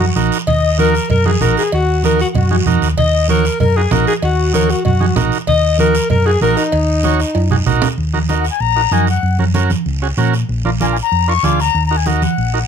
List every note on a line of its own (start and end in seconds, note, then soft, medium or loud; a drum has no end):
0.00 0.14 F#4 medium
0.00 0.06 F#4 medium
0.00 0.06 A#4 medium
0.00 high conga medium
0.16 0.29 A#1 medium
0.16 0.38 D#4 medium
0.16 0.38 F#4 medium
0.16 0.38 A#4 medium
0.16 high conga medium
0.16 short guiro medium
0.32 short guiro medium
0.47 0.98 D#2 medium
0.47 0.77 D#5 loud
0.47 0.77 D#5 medium
0.47 cowbell loud
0.47 low conga medium
0.47 long guiro medium
0.78 0.95 D#4 medium
0.78 0.95 F#4 medium
0.78 1.08 A#4 loud
0.78 0.95 A#4 medium
0.78 1.08 A#4 medium
0.78 high conga medium
0.78 short guiro medium
0.95 short guiro medium
1.10 1.35 F#2 medium
1.10 1.28 A#4 loud
1.10 1.28 A#4 medium
1.10 cowbell medium
1.10 low conga medium
1.10 long guiro medium
1.25 1.31 D#4 medium
1.25 1.31 F#4 medium
1.25 1.44 G#4 medium
1.25 1.31 A#4 medium
1.25 high conga medium
1.41 1.54 A#1 medium
1.41 1.63 D#4 medium
1.41 1.63 F#4 medium
1.41 1.64 A#4 medium
1.41 1.57 A#4 medium
1.41 high conga medium
1.41 low conga medium
1.41 short guiro medium
1.57 1.72 G#4 medium
1.57 short guiro medium
1.72 2.23 D#2 medium
1.72 2.02 F#4 medium
1.72 2.03 F#4 medium
1.72 cowbell loud
1.72 long guiro medium
2.03 2.21 D#4 medium
2.03 2.21 F#4 medium
2.03 2.21 A#4 medium
2.03 2.19 A#4 medium
2.03 high conga medium
2.03 short guiro medium
2.20 2.26 F#4 medium
2.20 2.28 F#4 medium
2.20 short guiro medium
2.35 2.60 F#2 medium
2.35 2.65 F#4 medium
2.35 cowbell medium
2.35 low conga medium
2.35 long guiro medium
2.51 2.56 D#4 medium
2.51 2.56 F#4 medium
2.51 2.57 G#4 medium
2.51 high conga medium
2.66 2.80 F2 medium
2.66 2.88 D#4 medium
2.66 2.88 F#4 medium
2.66 2.89 A#4 medium
2.66 high conga medium
2.66 low conga medium
2.66 short guiro medium
2.82 2.96 D#2 medium
2.82 short guiro medium
2.97 3.48 D#2 loud
2.97 3.27 D#5 loud
2.97 3.27 D#5 medium
2.97 cowbell loud
2.97 low conga medium
2.97 long guiro medium
3.29 3.45 D#4 medium
3.29 3.46 F#4 medium
3.29 3.58 A#4 medium
3.29 3.58 A#4 loud
3.29 3.46 C#5 medium
3.29 high conga medium
3.29 short guiro medium
3.45 short guiro medium
3.60 3.85 F#2 medium
3.60 3.78 A#4 medium
3.60 cowbell medium
3.60 low conga medium
3.60 long guiro medium
3.76 3.82 D#4 medium
3.76 3.82 F#4 medium
3.76 3.93 G#4 medium
3.76 3.82 A#4 medium
3.91 4.04 A#1 medium
3.91 4.13 D#4 medium
3.91 4.14 F#4 medium
3.91 4.07 A#4 medium
3.91 4.14 A#4 medium
3.91 high conga medium
3.91 low conga medium
3.91 low timbale medium
3.91 short guiro medium
4.07 4.14 G#4 medium
4.07 4.15 G#4 medium
4.07 short guiro medium
4.22 4.73 D#2 loud
4.22 4.52 F#4 medium
4.22 cowbell loud
4.22 long guiro medium
4.53 4.70 D#4 medium
4.53 4.70 F#4 medium
4.53 4.72 A#4 loud
4.53 4.72 A#4 medium
4.53 4.71 C#5 medium
4.53 high conga medium
4.53 short guiro medium
4.70 4.85 F#4 medium
4.70 4.86 F#4 medium
4.70 short guiro medium
4.85 5.10 F#2 medium
4.85 5.14 F#4 medium
4.85 5.15 F#4 medium
4.85 cowbell medium
4.85 low conga medium
4.85 long guiro medium
5.00 5.06 D#4 medium
5.00 5.06 F#4 medium
5.00 5.06 G#4 medium
5.00 high conga medium
5.16 5.29 A#1 medium
5.16 5.38 D#4 medium
5.16 5.38 F#4 medium
5.16 5.38 A#4 medium
5.16 high conga medium
5.16 low conga medium
5.16 low timbale medium
5.16 short guiro medium
5.32 short guiro medium
5.47 5.98 D#2 loud
5.47 5.77 D#5 loud
5.47 5.77 D#5 medium
5.47 cowbell loud
5.47 low conga medium
5.47 long guiro medium
5.79 5.95 D#4 medium
5.79 5.96 F#4 medium
5.79 6.08 A#4 medium
5.79 6.08 A#4 loud
5.79 5.96 A#4 medium
5.79 high conga medium
5.79 short guiro medium
5.95 short guiro medium
6.10 6.35 F#2 medium
6.10 6.28 A#4 loud
6.10 6.28 A#4 medium
6.10 cowbell medium
6.10 low conga medium
6.10 long guiro medium
6.25 6.31 D#4 medium
6.25 6.31 F#4 medium
6.25 6.41 G#4 medium
6.25 6.32 G#4 medium
6.25 6.42 G#4 medium
6.41 6.54 A#1 medium
6.41 6.63 D#4 medium
6.41 6.64 F#4 medium
6.41 6.59 A#4 loud
6.41 6.59 A#4 medium
6.41 6.64 A#4 medium
6.41 high conga medium
6.41 short guiro medium
6.57 7.67 D#4 medium
6.57 short guiro medium
6.72 7.23 D#2 loud
6.72 cowbell loud
6.72 long guiro medium
7.03 7.20 D#4 medium
7.03 7.20 F#4 medium
7.03 7.21 C#5 medium
7.03 high conga medium
7.03 short guiro medium
7.20 short guiro medium
7.35 7.60 F#2 medium
7.35 cowbell medium
7.35 high timbale medium
7.35 long guiro medium
7.51 7.56 D#4 medium
7.51 7.57 F#4 medium
7.51 7.57 G#4 medium
7.51 low conga medium
7.66 7.79 A#1 loud
7.66 7.88 D#4 medium
7.66 7.88 F#4 medium
7.66 7.89 A#4 loud
7.66 low conga loud
7.66 short guiro medium
7.82 low conga medium
7.82 low timbale loud
7.82 short guiro medium
7.98 8.48 D#2 medium
7.98 high conga soft
7.98 long guiro medium
8.13 8.19 D#4 medium
8.13 8.19 F#4 medium
8.13 8.19 A#4 medium
8.13 high conga medium
8.29 8.45 D#4 medium
8.29 8.46 F#4 medium
8.29 8.46 A#4 medium
8.29 8.34 D#5 medium
8.29 high conga medium
8.29 short guiro medium
8.40 8.49 F#5 medium
8.45 short guiro medium
8.51 8.62 G#5 medium
8.60 8.85 A#1 medium
8.60 8.94 A#5 loud
8.60 high conga soft
8.60 long guiro medium
8.76 8.81 D#4 medium
8.76 8.82 F#4 medium
8.76 8.82 A#4 medium
8.91 9.17 F#2 medium
8.91 9.08 D#4 medium
8.91 9.08 F#4 medium
8.91 9.09 A#4 medium
8.91 9.08 G#5 medium
8.91 high conga medium
8.91 short guiro medium
9.07 9.38 F#5 medium
9.07 short guiro medium
9.23 9.73 F#2 medium
9.23 high conga soft
9.23 long guiro medium
9.38 9.45 C#4 medium
9.38 9.45 F#4 medium
9.38 9.45 A#4 medium
9.38 high conga medium
9.54 9.71 C#4 medium
9.54 9.71 F#4 medium
9.54 9.71 A#4 medium
9.54 high conga medium
9.54 short guiro medium
9.70 high conga medium
9.70 short guiro medium
9.86 10.11 C#2 medium
9.86 high conga soft
9.86 long guiro medium
10.02 10.07 C#4 medium
10.02 10.08 F#4 medium
10.02 10.08 G#4 medium
10.17 10.43 A#2 medium
10.17 10.34 C#4 medium
10.17 10.34 F#4 medium
10.17 10.34 A#4 loud
10.17 high conga medium
10.17 short guiro medium
10.33 short guiro medium
10.49 10.99 A#1 medium
10.49 high conga soft
10.49 long guiro medium
10.65 10.70 D4 medium
10.65 10.70 F4 medium
10.65 10.71 A#4 medium
10.65 high conga medium
10.80 10.97 D4 medium
10.80 10.97 F4 medium
10.80 10.97 A#4 medium
10.80 10.86 G#5 medium
10.80 high conga medium
10.80 short guiro medium
10.92 10.97 G#5 medium
10.97 short guiro medium
11.02 11.30 A#5 medium
11.12 11.37 F2 medium
11.12 high conga soft
11.12 long guiro medium
11.28 11.33 D4 medium
11.28 11.33 F4 medium
11.28 11.33 A#4 medium
11.28 11.46 C#6 medium
11.43 11.68 D2 medium
11.43 11.60 D4 medium
11.43 11.60 F4 medium
11.43 11.60 G#4 medium
11.43 11.62 D6 medium
11.43 high conga medium
11.43 short guiro medium
11.60 11.86 A#5 loud
11.60 short guiro medium
11.75 12.25 D#2 medium
11.75 high conga soft
11.75 long guiro medium
11.87 11.98 A#5 medium
11.91 11.96 D#4 medium
11.91 11.96 F#4 medium
11.91 11.96 A#4 medium
11.97 12.09 G#5 medium
12.06 12.23 D#4 medium
12.06 12.23 F#4 medium
12.06 12.23 A#4 medium
12.06 12.67 F#5 medium
12.06 high conga medium
12.06 short guiro medium
12.22 high conga medium
12.22 short guiro medium
12.38 12.63 A#1 medium
12.38 high conga soft
12.38 long guiro medium
12.54 12.59 D#4 medium
12.54 12.59 F#4 medium
12.54 12.59 A#4 medium